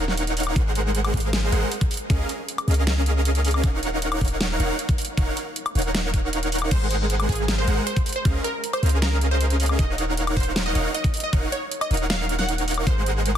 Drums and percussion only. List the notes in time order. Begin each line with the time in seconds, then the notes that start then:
0.08 snare
0.17 closed hi-hat
0.27 closed hi-hat
0.37 closed hi-hat, open hi-hat
0.43 closed hi-hat, high woodblock
0.56 kick, closed hi-hat
0.75 closed hi-hat
0.95 closed hi-hat
1.04 closed hi-hat, high woodblock
1.14 kick, closed hi-hat
1.17 closed hi-hat
1.20 closed hi-hat
1.33 snare, closed hi-hat
1.52 closed hi-hat
1.72 closed hi-hat
1.81 kick, closed hi-hat
1.91 closed hi-hat, open hi-hat
1.97 closed hi-hat
2.10 kick, closed hi-hat
2.29 closed hi-hat
2.48 closed hi-hat
2.58 closed hi-hat, high woodblock
2.68 closed hi-hat
2.71 closed hi-hat
2.74 closed hi-hat
2.87 snare, closed hi-hat
3.06 closed hi-hat
3.25 closed hi-hat
3.35 closed hi-hat
3.45 closed hi-hat, open hi-hat
3.51 closed hi-hat, high woodblock
3.64 kick, closed hi-hat
3.83 closed hi-hat
4.02 closed hi-hat
4.12 closed hi-hat, high woodblock
4.21 kick, closed hi-hat
4.25 closed hi-hat
4.28 closed hi-hat
4.41 snare, closed hi-hat
4.60 closed hi-hat
4.79 closed hi-hat
4.89 kick, closed hi-hat
4.98 closed hi-hat, open hi-hat
5.05 closed hi-hat
5.17 kick, closed hi-hat
5.37 closed hi-hat
5.56 closed hi-hat
5.66 closed hi-hat, high woodblock
5.75 closed hi-hat
5.79 closed hi-hat
5.82 closed hi-hat
5.95 snare, closed hi-hat
6.14 kick, closed hi-hat
6.33 closed hi-hat
6.43 closed hi-hat
6.52 closed hi-hat, open hi-hat
6.58 closed hi-hat, high woodblock
6.71 kick, closed hi-hat, crash
6.91 closed hi-hat
7.10 closed hi-hat
7.20 closed hi-hat, high woodblock
7.29 kick, closed hi-hat
7.32 closed hi-hat
7.35 closed hi-hat
7.48 snare, closed hi-hat
7.68 closed hi-hat
7.87 closed hi-hat
7.96 kick, closed hi-hat
8.06 closed hi-hat, open hi-hat
8.13 closed hi-hat
8.25 kick, closed hi-hat
8.44 closed hi-hat
8.64 closed hi-hat
8.73 closed hi-hat, high woodblock
8.83 closed hi-hat
8.86 closed hi-hat
8.89 closed hi-hat
9.02 snare, closed hi-hat
9.21 closed hi-hat
9.41 closed hi-hat
9.50 closed hi-hat
9.60 closed hi-hat, open hi-hat
9.66 closed hi-hat, high woodblock
9.79 kick, closed hi-hat
9.98 closed hi-hat
10.17 closed hi-hat
10.27 closed hi-hat, high woodblock
10.37 kick, closed hi-hat
10.40 closed hi-hat
10.43 closed hi-hat
10.56 snare, closed hi-hat
10.75 closed hi-hat
10.94 closed hi-hat
11.04 kick, closed hi-hat
11.14 closed hi-hat, open hi-hat
11.20 closed hi-hat
11.33 kick, closed hi-hat
11.52 closed hi-hat
11.71 closed hi-hat
11.81 closed hi-hat, high woodblock
11.91 closed hi-hat
11.94 closed hi-hat
11.97 closed hi-hat
12.10 snare, closed hi-hat
12.29 closed hi-hat
12.39 snare
12.49 closed hi-hat
12.58 closed hi-hat
12.68 closed hi-hat, open hi-hat
12.74 closed hi-hat, high woodblock
12.87 kick, closed hi-hat
13.06 closed hi-hat
13.26 closed hi-hat